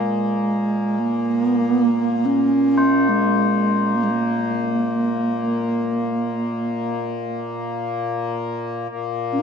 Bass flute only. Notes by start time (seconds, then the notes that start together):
Already playing: G#3
0.99 A#3
1.44 B3
1.57 A#3
1.70 B3
1.82 A#3
2.25 C#4
3.09 G#3
3.96 A#3
4.03 G#3
4.10 A#3
9.32 C#4